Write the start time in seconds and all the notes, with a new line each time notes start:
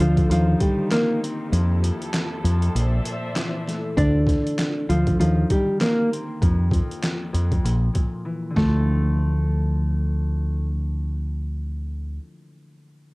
Already playing: D3 A3 D4 F4 C5
0.00 D2 D3 F3 F4, closed hi-hat
0.17 kick, closed hi-hat
0.29 D#2 D#3 F3 D#4 F4 G4, closed hi-hat
0.60 D#3 G3 G4, kick, closed hi-hat
0.91 A#3 A#4, snare, clap, closed hi-hat
1.23 C4, closed hi-hat
1.52 F2 F3 E4 A4, closed hi-hat
1.82 F2, closed hi-hat
2.02 closed hi-hat
2.14 snare, clap, closed hi-hat
2.43 F2, closed hi-hat
2.62 closed hi-hat
2.75 A#1 A#2 C5 D5 E5, closed hi-hat
3.04 A#2, closed hi-hat
3.35 E3, snare, clap, closed hi-hat
3.67 A3, snare, closed hi-hat
3.97 D2 D3 D4 D5, kick, closed hi-hat
4.27 D3, kick, snare, closed hi-hat
4.47 closed hi-hat
4.59 snare, clap, closed hi-hat
4.89 D2 D3 F3 F4, closed hi-hat
5.07 kick, closed hi-hat
5.19 D#2 D#3 F3 F4, closed hi-hat
5.50 D#3 G3 G4, kick, closed hi-hat
5.81 A#3 A#4, snare, clap, closed hi-hat
6.12 C4, closed hi-hat
6.41 F2, kick, closed hi-hat
6.71 F2, kick, closed hi-hat
6.91 closed hi-hat
7.04 snare, clap, closed hi-hat
7.33 F2, closed hi-hat
7.52 kick, closed hi-hat
7.64 A#1 A#2, closed hi-hat
7.94 A#2, kick, closed hi-hat
8.25 E3
8.50 D3 F3
8.56 D2 A3, kick, snare
8.62 C4